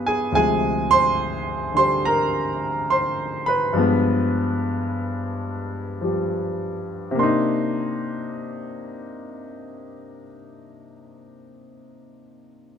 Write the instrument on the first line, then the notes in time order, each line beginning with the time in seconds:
grand piano
Already playing: G2 F3 G3 G#3 B3 G#4 B4 G#5 B5
0.06 G#4 G#5
0.32 D2 C3 F3 G#5
0.36 G#3 G#4
0.91 C5 C6
1.74 D3 G3 C6
1.78 C5
2.05 A#4 A#5
2.90 C5 C6
3.46 B4 B5
3.73 G2 F3 G#3
3.78 B3
6.01 F3 G3
7.11 C3
7.15 A#3 D4
7.19 D#4 C6